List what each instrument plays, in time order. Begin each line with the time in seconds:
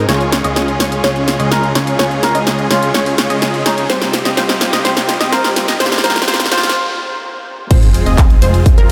Already playing: riser
0.09 analog synth bass C#2, string section C#3 C#4 F4 G#4, supersaw synth G#3 C#4 F4 G#4 C#5, synth pluck C#5, snare, closed hi-hat
0.21 closed hi-hat
0.32 snare, open hi-hat
0.44 analog synth bass C#2, supersaw synth G#3 C#4 F4 G#4 D#5, synth pluck D#5, closed hi-hat
0.56 snare, closed hi-hat
0.68 closed hi-hat
0.80 analog synth bass C#2, supersaw synth G#3 C#4 F4 G#4 C#5, synth pluck C#5, snare, open hi-hat
0.92 closed hi-hat
1.04 analog synth bass C#2, supersaw synth G#3 C#4 F4 G#4 C#5, synth pluck C#5, snare, closed hi-hat
1.16 closed hi-hat
1.28 snare, open hi-hat
1.40 analog synth bass C#2, supersaw synth G#3 C#4 F4 G#4 D#5, synth pluck D#5, closed hi-hat
1.52 muted trumpet A#4, snare, closed hi-hat
1.63 closed hi-hat
1.75 analog synth bass C#2, supersaw synth G#3 C#4 F4 G#4 C#5, synth pluck C#5, snare, open hi-hat
1.87 closed hi-hat
1.99 analog synth bass C#2, supersaw synth G#3 C#4 F4 G#4 C#5, synth pluck C#5, snare, closed hi-hat
2.11 closed hi-hat
2.23 muted trumpet A#4, snare, open hi-hat
2.35 analog synth bass C#2, supersaw synth G#3 C#4 F4 G#4 D#5, synth pluck D#5, closed hi-hat
2.47 snare, closed hi-hat
2.59 closed hi-hat
2.71 analog synth bass C#2, supersaw synth G#3 C#4 F4 G#4 C#5, muted trumpet F4, synth pluck C#5, snare, open hi-hat
2.83 closed hi-hat
2.94 analog synth bass C#2, supersaw synth G#3 C#4 F4 G#4 C#5, synth pluck C#5, snare, closed hi-hat
3.06 open hi-hat
3.18 snare, open hi-hat
3.30 analog synth bass C#2, supersaw synth G#3 C#4 F4 G#4 D#5, synth pluck D#5, closed hi-hat
3.42 snare, closed hi-hat
3.54 closed hi-hat
3.66 analog synth bass C#2, supersaw synth G#3 C#4 F4 G#4 C#5, muted trumpet D#4, synth pluck C#5, snare, open hi-hat
3.78 muted trumpet D#4, closed hi-hat
3.90 analog synth bass C2, string section C3 C4 D#4 G4, supersaw synth G3 C4 F4 G4 C5, synth pluck C5, snare, closed hi-hat
4.02 snare, closed hi-hat
4.13 snare, open hi-hat
4.25 analog synth bass C2, supersaw synth G3 C4 F4 G4 D#5, synth pluck D#5, snare, closed hi-hat
4.37 analog synth bass C2, supersaw synth G3 C4 F4 G4 C5, synth pluck C5, snare, closed hi-hat
4.49 snare, closed hi-hat
4.61 snare, open hi-hat
4.73 analog synth bass C2, supersaw synth G3 C4 F4 G4 D#5, synth pluck D#5, snare, closed hi-hat
4.85 analog synth bass C2, supersaw synth G3 C4 F4 G4 C5, synth pluck C5, snare, closed hi-hat
4.97 snare, closed hi-hat
5.09 snare, open hi-hat
5.21 analog synth bass C2, supersaw synth G3 C4 F4 G4 D#5, synth pluck D#5, snare, closed hi-hat
5.33 analog synth bass C2, supersaw synth G3 C4 F4 G4 C5, muted trumpet A#4, synth pluck C5, snare, closed hi-hat
5.44 snare, closed hi-hat
5.56 snare, open hi-hat
5.68 analog synth bass C2, supersaw synth G3 C4 F4 G4 D#5, synth pluck D#5, snare, closed hi-hat
5.80 analog synth bass C2, supersaw synth G3 C4 F4 G4 C5, synth pluck C5, snare, closed hi-hat
5.86 snare
5.92 snare, closed hi-hat
5.98 snare
6.04 analog synth bass C2, supersaw synth G3 C4 F4 G4 C5, muted trumpet A#4, synth pluck C5, snare, open hi-hat
6.10 snare
6.16 snare, closed hi-hat
6.22 snare
6.28 analog synth bass C2, supersaw synth G3 C4 F4 G4 C5, synth pluck C5, snare, closed hi-hat
6.34 snare
6.40 snare, closed hi-hat
6.46 snare
6.52 analog synth bass C2, supersaw synth G3 C4 F4 G4 C5, muted trumpet F4, synth pluck C5, snare, open hi-hat
6.58 snare
6.63 snare, closed hi-hat
6.69 snare
7.71 analog synth bass F1, supersaw synth G#3 C4 F4 G#4 C5, string section G#3 C4 F4, synth pluck C5, kick, closed hi-hat, crash, sub drop
7.83 closed hi-hat
7.94 open hi-hat
8.06 analog synth bass F1, supersaw synth G#3 C4 F4 G#4 D#5, synth pluck D#5, closed hi-hat
8.18 kick, clap, closed hi-hat
8.30 closed hi-hat
8.42 analog synth bass F1, supersaw synth G#3 C4 F4 G#4 C5, synth pluck C5, open hi-hat
8.54 closed hi-hat
8.66 kick, closed hi-hat
8.78 analog synth bass F1, supersaw synth G#3 C4 F4 G#4 A#4, synth pluck A#4, closed hi-hat